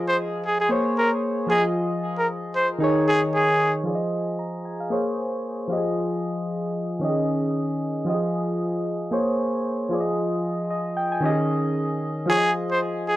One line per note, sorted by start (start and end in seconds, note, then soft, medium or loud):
0.00 0.67 F3 medium
0.00 0.68 F4 medium
0.00 0.69 G#4 medium
0.00 0.70 D#5 medium
0.08 0.17 C5 medium
0.46 0.58 G#4 medium
0.60 0.69 G#4 medium
0.69 1.49 A#3 medium
0.69 1.49 G#4 medium
0.69 1.50 C5 medium
0.69 1.50 C#5 medium
0.98 1.10 A#4 medium
1.47 2.77 F3 medium
1.47 2.78 F4 medium
1.47 2.79 G#4 medium
1.47 1.63 G#4 medium
1.52 2.80 D#5 medium
2.18 2.27 A#4 medium
2.55 2.68 C5 medium
2.78 3.83 D#3 medium
2.78 3.84 D#4 medium
2.78 3.85 G#4 medium
2.84 3.85 C#5 medium
3.08 3.21 G#4 medium
3.35 3.73 G#4 medium
3.84 4.88 F3 medium
3.84 4.89 F4 medium
3.84 4.90 G#4 medium
3.89 3.95 D5 medium
3.95 4.94 D#5 medium
4.39 4.64 A#5 medium
4.65 4.80 G#5 medium
4.80 5.05 F5 medium
4.90 5.70 A#3 medium
4.90 5.70 G#4 medium
4.90 5.71 C5 medium
4.90 5.71 C#5 medium
5.68 6.98 F3 medium
5.68 6.99 F4 medium
5.68 5.78 G4 medium
5.73 7.00 D#5 medium
5.77 7.03 G#4 medium
7.00 8.04 D#3 medium
7.00 8.05 C#4 medium
7.00 7.10 G4 medium
7.04 8.06 D#5 medium
7.09 8.09 G#4 medium
8.05 9.09 F3 medium
8.05 9.10 F4 medium
8.05 8.15 G4 medium
8.10 9.12 D#5 medium
8.14 9.11 G#4 medium
9.11 9.91 A#3 medium
9.11 9.91 G#4 medium
9.11 9.92 C5 medium
9.11 9.92 C#5 medium
9.89 11.19 F3 medium
9.89 11.20 F4 medium
9.89 11.21 G#4 medium
9.94 10.00 D5 medium
10.00 10.69 D#5 medium
10.70 10.95 D#5 medium
10.97 11.11 G5 medium
11.12 11.37 G#5 medium
11.20 12.25 D#3 medium
11.20 12.26 C#4 medium
11.20 11.31 G4 medium
11.25 12.27 D#5 medium
11.30 12.28 G#4 medium
12.26 13.17 F3 medium
12.26 13.17 F4 medium
12.26 13.17 G#4 medium
12.26 12.51 G#4 loud
12.31 12.37 C#5 medium
12.37 13.17 D#5 medium
12.71 12.80 C5 medium
13.08 13.17 G#4 medium